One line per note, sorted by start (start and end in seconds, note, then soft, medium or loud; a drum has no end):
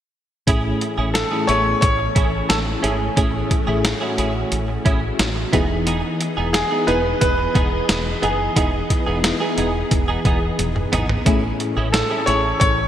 0.47 0.72 A1 loud
0.47 1.45 A2 medium
0.47 5.49 E3 medium
0.47 0.98 A3 medium
0.47 5.49 A3 medium
0.47 0.61 C#4 medium
0.47 0.98 C#4 medium
0.47 5.49 C#4 medium
0.47 0.99 E4 medium
0.47 0.61 E4 medium
0.47 0.99 G#4 medium
0.47 0.61 G#4 medium
0.47 kick medium
0.47 closed hi-hat medium
0.64 muted clean electric guitar stroke soft
0.81 muted clean electric guitar stroke soft
0.81 closed hi-hat medium
0.98 1.22 A1 loud
0.98 1.09 C#4 medium
0.98 1.09 E4 medium
0.98 1.08 G#4 medium
1.14 1.49 A4 medium
1.14 muted clean electric guitar stroke soft
1.14 snare loud
1.14 closed hi-hat medium
1.31 1.42 A3 medium
1.31 1.42 C#4 medium
1.31 1.43 C#4 medium
1.31 1.42 E4 medium
1.31 1.42 G#4 medium
1.47 1.73 A1 loud
1.47 2.30 A3 medium
1.47 1.55 B3 medium
1.47 1.61 C#4 medium
1.47 1.62 E4 medium
1.47 2.30 E4 medium
1.47 2.30 G#4 medium
1.47 1.62 G#4 medium
1.47 1.80 C#5 loud
1.47 closed hi-hat medium
1.55 2.33 C#4 medium
1.65 muted clean electric guitar stroke soft
1.81 2.07 A1 medium
1.81 2.51 C#5 loud
1.81 muted clean electric guitar stroke soft
1.81 kick medium
1.81 closed hi-hat medium
1.99 muted clean electric guitar stroke medium
2.15 2.40 A1 medium
2.15 2.29 C#4 medium
2.15 2.29 E4 medium
2.15 2.30 G#4 medium
2.15 kick loud
2.15 closed hi-hat medium
2.32 muted clean electric guitar stroke soft
2.49 2.74 A1 loud
2.49 2.57 A4 medium
2.49 muted clean electric guitar stroke soft
2.49 snare loud
2.49 closed hi-hat medium
2.66 muted clean electric guitar stroke medium
2.82 3.08 G#1 medium
2.82 2.96 C#4 medium
2.82 2.97 E4 medium
2.82 4.14 G#4 medium
2.82 2.97 G#4 medium
2.82 closed hi-hat medium
3.00 muted clean electric guitar stroke soft
3.17 3.42 A1 medium
3.17 4.14 A2 medium
3.17 3.47 A3 medium
3.17 3.30 C#4 medium
3.17 3.48 C#4 medium
3.17 3.48 E4 medium
3.17 3.30 E4 medium
3.17 3.48 G#4 medium
3.17 3.31 G#4 medium
3.17 kick medium
3.17 closed hi-hat medium
3.33 muted clean electric guitar stroke soft
3.50 muted clean electric guitar stroke soft
3.50 kick medium
3.50 closed hi-hat medium
3.67 3.92 A1 loud
3.67 3.88 A3 medium
3.67 3.88 C#4 medium
3.67 3.79 C#4 medium
3.67 3.78 E4 medium
3.67 3.88 E4 medium
3.67 3.78 G#4 medium
3.67 3.88 G#4 loud
3.84 muted clean electric guitar stroke soft
3.84 snare loud
3.84 closed hi-hat medium
4.01 4.83 A3 medium
4.01 4.83 C#4 medium
4.01 4.12 C#4 medium
4.01 4.83 E4 medium
4.01 4.12 E4 medium
4.01 4.83 F#4 loud
4.01 4.11 G#4 medium
4.17 4.43 A1 loud
4.17 4.31 C#4 medium
4.17 4.32 E4 medium
4.17 4.32 G#4 loud
4.17 closed hi-hat medium
4.35 muted clean electric guitar stroke soft
4.52 4.76 A1 loud
4.52 muted clean electric guitar stroke soft
4.52 closed hi-hat medium
4.68 muted clean electric guitar stroke soft
4.85 5.10 A1 medium
4.85 4.99 C#4 medium
4.85 4.99 E4 medium
4.85 4.99 G#4 medium
4.85 kick loud
4.85 closed hi-hat medium
5.02 muted clean electric guitar stroke soft
5.19 5.44 A1 loud
5.19 muted clean electric guitar stroke soft
5.19 snare loud
5.19 closed hi-hat medium
5.36 muted clean electric guitar stroke soft
5.53 6.02 E1 medium
5.53 11.22 E3 medium
5.53 6.50 E3 medium
5.53 6.47 B3 medium
5.53 11.22 B3 medium
5.53 5.66 B3 medium
5.53 6.47 D#4 medium
5.53 5.67 D#4 loud
5.53 6.48 E4 medium
5.53 11.22 G#4 medium
5.53 6.48 G#4 loud
5.53 5.67 G#4 medium
5.53 11.22 D#5 medium
5.53 kick loud
5.53 closed hi-hat medium
5.70 muted clean electric guitar stroke soft
5.86 6.00 B3 medium
5.86 6.00 D#4 medium
5.86 6.01 G#4 medium
5.86 closed hi-hat medium
6.04 muted clean electric guitar stroke soft
6.20 muted clean electric guitar stroke soft
6.20 closed hi-hat medium
6.37 6.62 E1 medium
6.37 6.48 B3 medium
6.37 6.48 D#4 medium
6.37 6.48 G#4 medium
6.53 6.88 G#4 loud
6.53 snare loud
6.53 closed hi-hat medium
6.71 6.81 B3 medium
6.71 6.82 B3 medium
6.71 6.81 D#4 medium
6.71 6.82 D#4 medium
6.71 6.81 E4 medium
6.71 6.81 G#4 medium
6.71 6.82 G#4 medium
6.87 7.12 E1 loud
6.87 7.69 B3 medium
6.87 7.01 B3 medium
6.87 7.69 D#4 medium
6.87 7.01 D#4 medium
6.87 7.69 E4 medium
6.87 7.70 G#4 medium
6.87 7.02 G#4 loud
6.87 7.20 B4 loud
6.87 closed hi-hat medium
7.04 muted clean electric guitar stroke soft
7.21 7.46 E1 medium
7.21 8.26 B4 loud
7.21 muted clean electric guitar stroke soft
7.21 kick medium
7.21 closed hi-hat medium
7.38 muted clean electric guitar stroke soft
7.55 7.80 E1 loud
7.55 7.68 B3 medium
7.55 7.69 D#4 medium
7.55 7.69 G#4 medium
7.55 kick loud
7.55 closed hi-hat medium
7.72 muted clean electric guitar stroke medium
7.89 8.13 E1 medium
7.89 muted clean electric guitar stroke soft
7.89 snare loud
7.89 closed hi-hat loud
8.06 muted clean electric guitar stroke soft
8.22 8.47 F#1 medium
8.22 9.20 E3 medium
8.22 8.36 B3 loud
8.22 8.36 D#4 loud
8.22 9.53 G#4 medium
8.22 8.37 G#4 loud
8.22 closed hi-hat medium
8.39 muted clean electric guitar stroke soft
8.56 8.81 E1 medium
8.56 8.69 B3 medium
8.56 8.87 B3 medium
8.56 8.87 D#4 medium
8.56 8.70 D#4 medium
8.56 8.87 E4 medium
8.56 8.87 G#4 medium
8.56 8.70 G#4 loud
8.56 kick medium
8.56 closed hi-hat medium
8.73 muted clean electric guitar stroke soft
8.90 muted clean electric guitar stroke soft
8.90 kick medium
8.90 closed hi-hat medium
9.06 9.31 E1 medium
9.06 9.27 B3 medium
9.06 9.18 B3 soft
9.06 9.27 D#4 medium
9.06 9.18 D#4 medium
9.06 9.28 E4 medium
9.06 9.17 G#4 medium
9.06 9.28 G#4 medium
9.24 muted clean electric guitar stroke soft
9.24 snare loud
9.24 closed hi-hat medium
9.40 10.22 B3 medium
9.40 9.52 B3 medium
9.40 10.22 D#4 medium
9.40 9.51 D#4 soft
9.40 10.22 E4 medium
9.40 9.51 G#4 medium
9.40 10.22 G#4 loud
9.57 9.82 E1 medium
9.57 9.71 B3 medium
9.57 9.71 D#4 medium
9.57 9.71 G#4 medium
9.57 closed hi-hat medium
9.74 muted clean electric guitar stroke medium
9.91 10.16 E1 medium
9.91 muted clean electric guitar stroke soft
9.91 kick medium
9.91 closed hi-hat medium
10.08 10.19 B3 medium
10.08 10.19 D#4 medium
10.08 10.18 G#4 medium
10.25 10.49 E1 medium
10.25 10.38 B3 medium
10.25 10.39 D#4 medium
10.25 10.39 G#4 medium
10.25 kick loud
10.25 closed hi-hat medium
10.42 muted clean electric guitar stroke soft
10.59 10.83 E1 loud
10.59 muted clean electric guitar stroke soft
10.59 closed hi-hat medium
10.59 high tom medium
10.76 muted clean electric guitar stroke soft
10.76 mid tom medium
10.92 11.17 G#1 medium
10.92 11.06 B3 medium
10.92 11.06 D#4 medium
10.92 11.06 G#4 medium
10.92 closed hi-hat medium
10.92 mid tom medium
11.09 muted clean electric guitar stroke soft
11.09 floor tom medium
11.26 11.50 A1 loud
11.26 12.23 A2 medium
11.26 12.88 E3 medium
11.26 11.77 A3 medium
11.26 12.88 A3 medium
11.26 11.39 C#4 medium
11.26 11.77 C#4 medium
11.26 12.88 C#4 medium
11.26 11.77 E4 medium
11.26 11.40 E4 medium
11.26 11.77 G#4 loud
11.26 11.40 G#4 medium
11.26 kick loud
11.26 closed hi-hat medium
11.43 muted clean electric guitar stroke soft
11.60 muted clean electric guitar stroke soft
11.60 closed hi-hat medium
11.77 12.01 A1 medium
11.77 11.88 C#4 medium
11.77 11.87 E4 medium
11.77 11.87 G#4 medium
11.92 12.28 A4 medium
11.92 muted clean electric guitar stroke soft
11.92 snare loud
11.92 closed hi-hat medium
12.10 12.20 A3 medium
12.10 12.21 C#4 medium
12.10 12.22 C#4 medium
12.10 12.21 E4 medium
12.10 12.21 G#4 medium
12.26 12.52 A1 medium
12.26 12.88 A3 medium
12.26 12.88 C#4 medium
12.26 12.40 C#4 medium
12.26 12.88 E4 medium
12.26 12.41 E4 medium
12.26 12.88 G#4 medium
12.26 12.41 G#4 medium
12.26 12.58 C#5 loud
12.26 closed hi-hat medium
12.44 muted clean electric guitar stroke medium
12.60 12.85 A1 loud
12.60 12.88 C#5 loud
12.60 muted clean electric guitar stroke soft
12.60 kick medium
12.60 closed hi-hat medium
12.78 muted clean electric guitar stroke soft